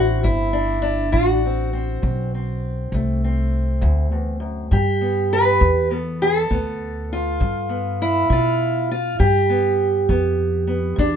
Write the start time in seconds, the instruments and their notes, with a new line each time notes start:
Already playing: upright bass A1, steel-string acoustic guitar A3 C4 F#4
0.23 upright bass G1, steel-string acoustic guitar D2 E4, kick
0.53 steel-string acoustic guitar D4
0.82 steel-string acoustic guitar D4
1.12 upright bass A1, steel-string acoustic guitar D2 F#4, kick
1.46 steel-string acoustic guitar C4
1.73 steel-string acoustic guitar C4
2.02 upright bass B1, steel-string acoustic guitar D2, kick
2.34 steel-string acoustic guitar C4
2.92 upright bass C2, steel-string acoustic guitar D2 A3, kick
3.24 steel-string acoustic guitar C4
3.81 steel-string acoustic guitar D2, upright bass D2, kick
4.12 steel-string acoustic guitar E2
4.40 steel-string acoustic guitar F#2
4.71 steel-string acoustic guitar G2 G4, upright bass G2, kick
5.01 steel-string acoustic guitar B3
5.33 steel-string acoustic guitar B4
5.60 upright bass E2, steel-string acoustic guitar G2, kick
5.91 steel-string acoustic guitar B3
5.96 steel-string acoustic guitar A4
6.22 steel-string acoustic guitar G#4
6.39 steel-string acoustic guitar A4
6.50 upright bass D2, steel-string acoustic guitar G2 B3, kick
7.13 steel-string acoustic guitar F4
7.40 steel-string acoustic guitar G2, upright bass G2, kick
7.69 steel-string acoustic guitar B3
8.02 steel-string acoustic guitar E4
8.30 steel-string acoustic guitar G2 F4, upright bass B2, kick
8.91 steel-string acoustic guitar F4
9.19 steel-string acoustic guitar G2 G4, upright bass G2, kick
9.49 steel-string acoustic guitar B3
10.09 upright bass F2, steel-string acoustic guitar G2 B3, kick
10.67 steel-string acoustic guitar B3
10.96 upright bass E2, steel-string acoustic guitar G2 D4, kick